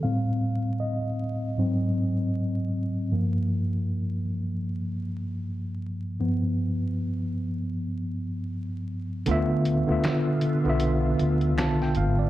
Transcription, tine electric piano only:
X:1
M:4/4
L:1/16
Q:"Swing 16ths" 1/4=78
K:Ddor
V:1 name="Tine electric piano"
f4 _e8- e2 z2 | z16 | z16 | [D,B,Fe]2 z [D,B,Fe]3 z [D,B,Fe]4- [D,B,Fe] a g f d |]
V:2 name="Tine electric piano" clef=bass
[A,,G,C]8 [^G,,^F,^B,]8 | [G,,F,_B,]6 z8 z2 | [G,,F,B,]16 | z16 |]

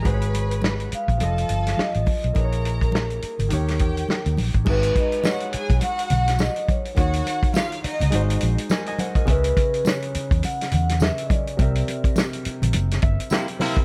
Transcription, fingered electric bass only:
X:1
M:4/4
L:1/16
Q:"Swing 16ths" 1/4=104
K:G#m
V:1 name="Fingered electric bass" clef=bass
G,,,6 z A,,, =F,,,2 =G,,,2 z =A,,, z B,,, | A,,,6 z G,,, D,,2 E,,2 z D,, A,,, =A,,, | G,,,2 z4 z B,,, z2 B,,,3 z3 | D,,2 z4 z C,, G,,,2 A,,, z4 z |
C,,2 z4 z E,, z2 E,,3 z3 | =C,,2 z4 z _B,,, F,,,2 =G,,, z4 z |]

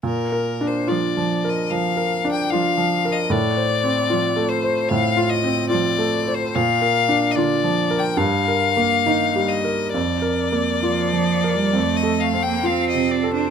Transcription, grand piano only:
X:1
M:4/4
L:1/8
Q:1/4=72
K:Bb
V:1 name="Grand piano"
(3B,, B D (3F F, B (3F, B D (3F F, B | (3A,, c C (3F A, c (3A,, F C (3F A, c | (3B,, B D (3F F, B (3G,, B B, (3E G, B | (3F,, B B, (3F F, B (3F,, A C (3F C, A |]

